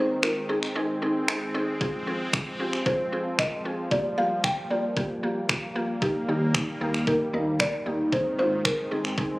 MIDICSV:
0, 0, Header, 1, 6, 480
1, 0, Start_track
1, 0, Tempo, 526316
1, 1651, Time_signature, 4, 2, 24, 8
1, 8565, End_track
2, 0, Start_track
2, 0, Title_t, "Marimba"
2, 0, Program_c, 0, 12
2, 0, Note_on_c, 0, 72, 96
2, 208, Note_on_c, 0, 70, 88
2, 217, Note_off_c, 0, 72, 0
2, 450, Note_on_c, 0, 68, 77
2, 456, Note_off_c, 0, 70, 0
2, 1374, Note_off_c, 0, 68, 0
2, 1651, Note_on_c, 0, 68, 83
2, 2610, Note_on_c, 0, 72, 95
2, 2640, Note_off_c, 0, 68, 0
2, 3093, Note_on_c, 0, 75, 96
2, 3105, Note_off_c, 0, 72, 0
2, 3571, Note_on_c, 0, 74, 98
2, 3586, Note_off_c, 0, 75, 0
2, 3811, Note_on_c, 0, 77, 106
2, 3818, Note_off_c, 0, 74, 0
2, 4052, Note_on_c, 0, 79, 102
2, 4058, Note_off_c, 0, 77, 0
2, 4159, Note_off_c, 0, 79, 0
2, 4291, Note_on_c, 0, 74, 92
2, 5214, Note_off_c, 0, 74, 0
2, 5494, Note_on_c, 0, 67, 88
2, 6454, Note_on_c, 0, 70, 96
2, 6481, Note_off_c, 0, 67, 0
2, 6935, Note_on_c, 0, 74, 106
2, 6947, Note_off_c, 0, 70, 0
2, 7416, Note_on_c, 0, 72, 101
2, 7427, Note_off_c, 0, 74, 0
2, 7642, Note_off_c, 0, 72, 0
2, 7653, Note_on_c, 0, 72, 102
2, 7893, Note_on_c, 0, 70, 97
2, 7899, Note_off_c, 0, 72, 0
2, 8133, Note_on_c, 0, 68, 80
2, 8139, Note_off_c, 0, 70, 0
2, 8565, Note_off_c, 0, 68, 0
2, 8565, End_track
3, 0, Start_track
3, 0, Title_t, "Synth pluck"
3, 0, Program_c, 1, 84
3, 0, Note_on_c, 1, 60, 74
3, 0, Note_on_c, 1, 63, 69
3, 0, Note_on_c, 1, 68, 84
3, 153, Note_off_c, 1, 60, 0
3, 155, Note_off_c, 1, 63, 0
3, 156, Note_off_c, 1, 68, 0
3, 208, Note_on_c, 1, 60, 75
3, 210, Note_on_c, 1, 63, 70
3, 212, Note_on_c, 1, 65, 83
3, 393, Note_off_c, 1, 60, 0
3, 394, Note_off_c, 1, 63, 0
3, 396, Note_off_c, 1, 65, 0
3, 447, Note_on_c, 1, 60, 74
3, 449, Note_on_c, 1, 63, 71
3, 451, Note_on_c, 1, 68, 84
3, 633, Note_off_c, 1, 60, 0
3, 634, Note_off_c, 1, 63, 0
3, 635, Note_off_c, 1, 68, 0
3, 689, Note_on_c, 1, 60, 102
3, 691, Note_on_c, 1, 63, 91
3, 693, Note_on_c, 1, 68, 107
3, 874, Note_off_c, 1, 60, 0
3, 875, Note_off_c, 1, 63, 0
3, 876, Note_off_c, 1, 68, 0
3, 930, Note_on_c, 1, 60, 73
3, 932, Note_on_c, 1, 63, 71
3, 935, Note_on_c, 1, 68, 82
3, 1114, Note_off_c, 1, 60, 0
3, 1116, Note_off_c, 1, 63, 0
3, 1117, Note_off_c, 1, 68, 0
3, 1168, Note_on_c, 1, 60, 93
3, 1170, Note_on_c, 1, 63, 83
3, 1172, Note_on_c, 1, 68, 96
3, 1354, Note_off_c, 1, 60, 0
3, 1355, Note_off_c, 1, 63, 0
3, 1356, Note_off_c, 1, 68, 0
3, 1408, Note_on_c, 1, 60, 91
3, 1410, Note_on_c, 1, 63, 84
3, 1413, Note_on_c, 1, 68, 107
3, 1594, Note_off_c, 1, 60, 0
3, 1595, Note_off_c, 1, 63, 0
3, 1596, Note_off_c, 1, 68, 0
3, 1648, Note_on_c, 1, 60, 96
3, 1650, Note_on_c, 1, 65, 90
3, 1653, Note_on_c, 1, 68, 99
3, 1834, Note_off_c, 1, 60, 0
3, 1834, Note_off_c, 1, 65, 0
3, 1836, Note_off_c, 1, 68, 0
3, 1888, Note_on_c, 1, 60, 74
3, 1890, Note_on_c, 1, 65, 65
3, 1892, Note_on_c, 1, 68, 86
3, 2074, Note_off_c, 1, 60, 0
3, 2075, Note_off_c, 1, 65, 0
3, 2075, Note_off_c, 1, 68, 0
3, 2129, Note_on_c, 1, 60, 75
3, 2131, Note_on_c, 1, 65, 68
3, 2133, Note_on_c, 1, 68, 81
3, 2314, Note_off_c, 1, 60, 0
3, 2315, Note_off_c, 1, 65, 0
3, 2316, Note_off_c, 1, 68, 0
3, 2368, Note_on_c, 1, 60, 92
3, 2370, Note_on_c, 1, 65, 82
3, 2373, Note_on_c, 1, 67, 97
3, 2554, Note_off_c, 1, 60, 0
3, 2554, Note_off_c, 1, 65, 0
3, 2556, Note_off_c, 1, 67, 0
3, 2607, Note_on_c, 1, 60, 97
3, 2610, Note_on_c, 1, 65, 90
3, 2612, Note_on_c, 1, 68, 106
3, 2793, Note_off_c, 1, 60, 0
3, 2795, Note_off_c, 1, 65, 0
3, 2796, Note_off_c, 1, 68, 0
3, 2849, Note_on_c, 1, 60, 74
3, 2851, Note_on_c, 1, 65, 68
3, 2853, Note_on_c, 1, 68, 83
3, 3034, Note_off_c, 1, 60, 0
3, 3035, Note_off_c, 1, 65, 0
3, 3036, Note_off_c, 1, 68, 0
3, 3089, Note_on_c, 1, 60, 76
3, 3091, Note_on_c, 1, 65, 68
3, 3093, Note_on_c, 1, 70, 85
3, 3274, Note_off_c, 1, 60, 0
3, 3275, Note_off_c, 1, 65, 0
3, 3276, Note_off_c, 1, 70, 0
3, 3330, Note_on_c, 1, 60, 76
3, 3332, Note_on_c, 1, 65, 70
3, 3334, Note_on_c, 1, 68, 86
3, 3515, Note_off_c, 1, 60, 0
3, 3516, Note_off_c, 1, 65, 0
3, 3517, Note_off_c, 1, 68, 0
3, 3569, Note_on_c, 1, 58, 92
3, 3571, Note_on_c, 1, 65, 87
3, 3573, Note_on_c, 1, 67, 99
3, 3754, Note_off_c, 1, 58, 0
3, 3755, Note_off_c, 1, 65, 0
3, 3756, Note_off_c, 1, 67, 0
3, 3809, Note_on_c, 1, 58, 73
3, 3811, Note_on_c, 1, 65, 67
3, 3814, Note_on_c, 1, 67, 84
3, 3994, Note_off_c, 1, 58, 0
3, 3995, Note_off_c, 1, 65, 0
3, 3997, Note_off_c, 1, 67, 0
3, 4049, Note_on_c, 1, 58, 73
3, 4051, Note_on_c, 1, 65, 65
3, 4054, Note_on_c, 1, 67, 79
3, 4234, Note_off_c, 1, 58, 0
3, 4235, Note_off_c, 1, 65, 0
3, 4237, Note_off_c, 1, 67, 0
3, 4290, Note_on_c, 1, 58, 78
3, 4293, Note_on_c, 1, 65, 68
3, 4295, Note_on_c, 1, 67, 84
3, 4475, Note_off_c, 1, 58, 0
3, 4476, Note_off_c, 1, 65, 0
3, 4477, Note_off_c, 1, 67, 0
3, 4530, Note_on_c, 1, 58, 99
3, 4533, Note_on_c, 1, 65, 89
3, 4535, Note_on_c, 1, 67, 109
3, 4715, Note_off_c, 1, 58, 0
3, 4716, Note_off_c, 1, 65, 0
3, 4717, Note_off_c, 1, 67, 0
3, 4770, Note_on_c, 1, 58, 74
3, 4772, Note_on_c, 1, 65, 70
3, 4774, Note_on_c, 1, 67, 84
3, 4955, Note_off_c, 1, 58, 0
3, 4956, Note_off_c, 1, 65, 0
3, 4957, Note_off_c, 1, 67, 0
3, 5009, Note_on_c, 1, 58, 86
3, 5011, Note_on_c, 1, 65, 81
3, 5013, Note_on_c, 1, 67, 95
3, 5194, Note_off_c, 1, 58, 0
3, 5195, Note_off_c, 1, 65, 0
3, 5196, Note_off_c, 1, 67, 0
3, 5248, Note_on_c, 1, 58, 89
3, 5250, Note_on_c, 1, 65, 84
3, 5252, Note_on_c, 1, 67, 101
3, 5434, Note_off_c, 1, 58, 0
3, 5435, Note_off_c, 1, 65, 0
3, 5435, Note_off_c, 1, 67, 0
3, 5489, Note_on_c, 1, 58, 96
3, 5492, Note_on_c, 1, 63, 83
3, 5494, Note_on_c, 1, 67, 105
3, 5674, Note_off_c, 1, 58, 0
3, 5676, Note_off_c, 1, 63, 0
3, 5677, Note_off_c, 1, 67, 0
3, 5731, Note_on_c, 1, 58, 75
3, 5734, Note_on_c, 1, 63, 67
3, 5736, Note_on_c, 1, 67, 84
3, 5915, Note_off_c, 1, 58, 0
3, 5917, Note_off_c, 1, 63, 0
3, 5918, Note_off_c, 1, 67, 0
3, 5971, Note_on_c, 1, 58, 75
3, 5974, Note_on_c, 1, 63, 68
3, 5976, Note_on_c, 1, 67, 84
3, 6155, Note_off_c, 1, 58, 0
3, 6157, Note_off_c, 1, 63, 0
3, 6157, Note_off_c, 1, 67, 0
3, 6210, Note_on_c, 1, 58, 90
3, 6213, Note_on_c, 1, 63, 87
3, 6214, Note_on_c, 1, 67, 98
3, 6395, Note_off_c, 1, 58, 0
3, 6396, Note_off_c, 1, 63, 0
3, 6397, Note_off_c, 1, 67, 0
3, 6450, Note_on_c, 1, 58, 100
3, 6452, Note_on_c, 1, 63, 94
3, 6455, Note_on_c, 1, 67, 107
3, 6635, Note_off_c, 1, 58, 0
3, 6636, Note_off_c, 1, 63, 0
3, 6637, Note_off_c, 1, 67, 0
3, 6689, Note_on_c, 1, 58, 76
3, 6691, Note_on_c, 1, 63, 68
3, 6693, Note_on_c, 1, 70, 81
3, 6874, Note_off_c, 1, 58, 0
3, 6875, Note_off_c, 1, 63, 0
3, 6876, Note_off_c, 1, 70, 0
3, 6927, Note_on_c, 1, 58, 77
3, 6930, Note_on_c, 1, 63, 68
3, 6933, Note_on_c, 1, 70, 84
3, 7113, Note_off_c, 1, 58, 0
3, 7115, Note_off_c, 1, 63, 0
3, 7116, Note_off_c, 1, 70, 0
3, 7167, Note_on_c, 1, 58, 77
3, 7170, Note_on_c, 1, 63, 73
3, 7172, Note_on_c, 1, 67, 88
3, 7353, Note_off_c, 1, 58, 0
3, 7355, Note_off_c, 1, 63, 0
3, 7356, Note_off_c, 1, 67, 0
3, 7408, Note_on_c, 1, 60, 90
3, 7411, Note_on_c, 1, 63, 83
3, 7413, Note_on_c, 1, 68, 102
3, 7593, Note_off_c, 1, 60, 0
3, 7595, Note_off_c, 1, 63, 0
3, 7596, Note_off_c, 1, 68, 0
3, 7648, Note_on_c, 1, 60, 77
3, 7651, Note_on_c, 1, 63, 70
3, 7653, Note_on_c, 1, 65, 85
3, 7834, Note_off_c, 1, 60, 0
3, 7835, Note_off_c, 1, 63, 0
3, 7836, Note_off_c, 1, 65, 0
3, 7888, Note_on_c, 1, 60, 74
3, 7891, Note_on_c, 1, 63, 69
3, 7893, Note_on_c, 1, 68, 84
3, 8074, Note_off_c, 1, 60, 0
3, 8075, Note_off_c, 1, 63, 0
3, 8076, Note_off_c, 1, 68, 0
3, 8128, Note_on_c, 1, 60, 76
3, 8130, Note_on_c, 1, 63, 71
3, 8133, Note_on_c, 1, 68, 83
3, 8314, Note_off_c, 1, 60, 0
3, 8315, Note_off_c, 1, 63, 0
3, 8316, Note_off_c, 1, 68, 0
3, 8368, Note_on_c, 1, 60, 97
3, 8370, Note_on_c, 1, 63, 88
3, 8373, Note_on_c, 1, 68, 106
3, 8554, Note_off_c, 1, 60, 0
3, 8555, Note_off_c, 1, 63, 0
3, 8556, Note_off_c, 1, 68, 0
3, 8565, End_track
4, 0, Start_track
4, 0, Title_t, "Analog synth pad"
4, 0, Program_c, 2, 89
4, 0, Note_on_c, 2, 51, 78
4, 0, Note_on_c, 2, 56, 70
4, 0, Note_on_c, 2, 60, 87
4, 1614, Note_off_c, 2, 51, 0
4, 1649, Note_on_c, 2, 53, 79
4, 3533, Note_off_c, 2, 60, 0
4, 3534, Note_off_c, 2, 56, 0
4, 3570, Note_on_c, 2, 55, 75
4, 3570, Note_on_c, 2, 58, 92
4, 5453, Note_off_c, 2, 53, 0
4, 5471, Note_off_c, 2, 55, 0
4, 5493, Note_on_c, 2, 51, 80
4, 5493, Note_on_c, 2, 55, 72
4, 7374, Note_off_c, 2, 58, 0
4, 7393, Note_off_c, 2, 55, 0
4, 7411, Note_on_c, 2, 56, 73
4, 7411, Note_on_c, 2, 60, 87
4, 8565, Note_off_c, 2, 51, 0
4, 8565, Note_off_c, 2, 56, 0
4, 8565, Note_off_c, 2, 60, 0
4, 8565, End_track
5, 0, Start_track
5, 0, Title_t, "Analog synth bass"
5, 0, Program_c, 3, 38
5, 5731, Note_on_c, 3, 39, 101
5, 6082, Note_off_c, 3, 39, 0
5, 6211, Note_on_c, 3, 39, 90
5, 6562, Note_off_c, 3, 39, 0
5, 6691, Note_on_c, 3, 39, 97
5, 7042, Note_off_c, 3, 39, 0
5, 7171, Note_on_c, 3, 39, 90
5, 7522, Note_off_c, 3, 39, 0
5, 7651, Note_on_c, 3, 32, 104
5, 8002, Note_off_c, 3, 32, 0
5, 8131, Note_on_c, 3, 32, 89
5, 8482, Note_off_c, 3, 32, 0
5, 8565, End_track
6, 0, Start_track
6, 0, Title_t, "Drums"
6, 211, Note_on_c, 9, 26, 102
6, 302, Note_off_c, 9, 26, 0
6, 572, Note_on_c, 9, 26, 65
6, 664, Note_off_c, 9, 26, 0
6, 1171, Note_on_c, 9, 26, 106
6, 1262, Note_off_c, 9, 26, 0
6, 1650, Note_on_c, 9, 36, 105
6, 1741, Note_off_c, 9, 36, 0
6, 2129, Note_on_c, 9, 36, 115
6, 2131, Note_on_c, 9, 26, 106
6, 2220, Note_off_c, 9, 36, 0
6, 2222, Note_off_c, 9, 26, 0
6, 2492, Note_on_c, 9, 26, 64
6, 2584, Note_off_c, 9, 26, 0
6, 2609, Note_on_c, 9, 36, 105
6, 2700, Note_off_c, 9, 36, 0
6, 3089, Note_on_c, 9, 36, 94
6, 3090, Note_on_c, 9, 26, 101
6, 3181, Note_off_c, 9, 26, 0
6, 3181, Note_off_c, 9, 36, 0
6, 3569, Note_on_c, 9, 36, 104
6, 3661, Note_off_c, 9, 36, 0
6, 4048, Note_on_c, 9, 36, 109
6, 4050, Note_on_c, 9, 26, 108
6, 4140, Note_off_c, 9, 36, 0
6, 4141, Note_off_c, 9, 26, 0
6, 4529, Note_on_c, 9, 36, 109
6, 4620, Note_off_c, 9, 36, 0
6, 5010, Note_on_c, 9, 36, 92
6, 5011, Note_on_c, 9, 26, 110
6, 5101, Note_off_c, 9, 36, 0
6, 5102, Note_off_c, 9, 26, 0
6, 5490, Note_on_c, 9, 36, 107
6, 5581, Note_off_c, 9, 36, 0
6, 5969, Note_on_c, 9, 36, 113
6, 5971, Note_on_c, 9, 26, 108
6, 6060, Note_off_c, 9, 36, 0
6, 6062, Note_off_c, 9, 26, 0
6, 6333, Note_on_c, 9, 26, 65
6, 6424, Note_off_c, 9, 26, 0
6, 6450, Note_on_c, 9, 36, 107
6, 6541, Note_off_c, 9, 36, 0
6, 6930, Note_on_c, 9, 36, 94
6, 6931, Note_on_c, 9, 26, 105
6, 7021, Note_off_c, 9, 36, 0
6, 7022, Note_off_c, 9, 26, 0
6, 7410, Note_on_c, 9, 36, 99
6, 7501, Note_off_c, 9, 36, 0
6, 7889, Note_on_c, 9, 36, 115
6, 7891, Note_on_c, 9, 26, 108
6, 7980, Note_off_c, 9, 36, 0
6, 7982, Note_off_c, 9, 26, 0
6, 8253, Note_on_c, 9, 26, 67
6, 8344, Note_off_c, 9, 26, 0
6, 8370, Note_on_c, 9, 36, 105
6, 8461, Note_off_c, 9, 36, 0
6, 8565, End_track
0, 0, End_of_file